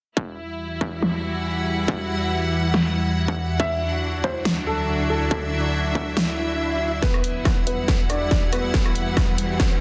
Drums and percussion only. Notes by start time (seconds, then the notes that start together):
0.17 kick
0.81 kick
1.03 snare
1.88 kick
2.74 snare
3.28 kick
3.60 kick
4.24 kick
4.45 snare
5.31 kick
5.95 kick
6.17 snare
7.03 kick, snare
7.14 cross-stick
7.24 closed hi-hat
7.45 kick, cross-stick, snare
7.67 closed hi-hat
7.88 kick, snare
8.10 cross-stick, closed hi-hat
8.31 kick, snare
8.53 cross-stick, closed hi-hat
8.74 kick, snare
8.86 cross-stick
8.95 closed hi-hat
9.17 kick, cross-stick, snare
9.38 closed hi-hat
9.60 kick, snare